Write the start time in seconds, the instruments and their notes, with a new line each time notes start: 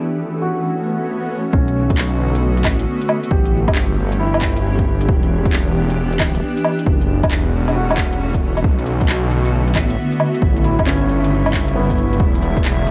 Already playing: ambient pad E3 A3 C#4 F#4, synth texture A3 A4
0.42 felt piano F#4
0.64 swell
1.53 detuned saw bass B1, ambient pad D3 A3 B3 F#4, felt piano C#4, kick
1.68 closed hi-hat
1.90 kick, closed hi-hat
1.98 clap
2.35 closed hi-hat
2.57 closed hi-hat
2.64 detuned saw bass A1, kick, clap, low woodblock
2.79 closed hi-hat
3.01 closed hi-hat
3.09 low woodblock
3.23 closed hi-hat
3.31 detuned saw bass A1, ambient pad E3 C#4 G4, felt piano G4, kick
3.46 closed hi-hat
3.68 detuned saw bass G1, kick, closed hi-hat, low woodblock
3.75 clap
4.12 closed hi-hat
4.19 felt piano E4
4.34 closed hi-hat, low woodblock
4.42 kick, clap
4.56 closed hi-hat
4.79 kick, closed hi-hat
5.01 closed hi-hat
5.09 detuned saw bass E1, ambient pad B3 D4 G4, kick
5.23 closed hi-hat
5.46 kick, closed hi-hat
5.53 clap
5.90 closed hi-hat
6.12 closed hi-hat
6.20 detuned saw bass D1, kick, clap, low woodblock
6.35 closed hi-hat
6.57 closed hi-hat
6.64 low woodblock
6.79 closed hi-hat
6.86 detuned saw bass F#1, ambient pad E3 A3 C#4 F#4, kick
7.01 closed hi-hat
7.23 detuned saw bass E1, kick, closed hi-hat, low woodblock
7.31 clap
7.68 closed hi-hat, low woodblock
7.75 felt piano F#4
7.91 closed hi-hat, low woodblock
7.98 kick, clap
8.13 closed hi-hat
8.34 kick, closed hi-hat
8.57 closed hi-hat, low woodblock
8.64 detuned saw bass B1, ambient pad D3 B3 F#4, synth texture E4 E5, kick
8.79 closed hi-hat
8.86 open hi-hat
9.01 kick, closed hi-hat
9.09 clap
9.31 open hi-hat
9.45 closed hi-hat
9.68 closed hi-hat
9.75 detuned saw bass A1, kick, clap, open hi-hat, low woodblock
9.90 closed hi-hat
10.12 closed hi-hat
10.20 open hi-hat, low woodblock
10.35 closed hi-hat
10.42 detuned saw bass A1, ambient pad C#3 G3 E4, kick
10.57 closed hi-hat
10.64 felt piano E4, open hi-hat
10.79 detuned saw bass G1, kick, closed hi-hat, low woodblock
10.86 felt piano C#4, clap
11.09 open hi-hat
11.24 closed hi-hat
11.46 closed hi-hat, low woodblock
11.53 kick, clap, open hi-hat
11.68 closed hi-hat
11.76 felt piano B3
11.90 kick, closed hi-hat
11.95 felt piano E4, open hi-hat
12.13 closed hi-hat
12.20 detuned saw bass E1, ambient pad D3 G3 B3, kick
12.35 closed hi-hat
12.43 open hi-hat
12.57 kick, closed hi-hat
12.65 clap
12.87 open hi-hat